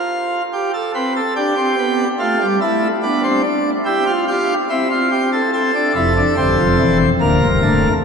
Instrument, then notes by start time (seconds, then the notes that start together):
pipe organ
Already playing: F4
0.54 G4
0.74 A4
0.95 C4 B4
1.16 A4
1.36 D4 G4
1.57 C4
1.78 B3
2.20 A3 F4
2.41 G3
2.61 A3 E4
3.03 B3 D4
3.24 C4
3.44 D4
3.85 E4 G4
4.07 F4
4.28 F4 G4
4.70 C4 E4
4.91 F4
5.11 G4
5.33 A4
5.53 C4 A4
5.75 D4
5.95 F1 F2 E4
6.17 D4
6.37 G1 G2 C4
6.58 F1 F2
6.79 E1 E2
7.21 D1 D2 A#3 A#4
7.42 C1 C2
7.62 D1 D2 A3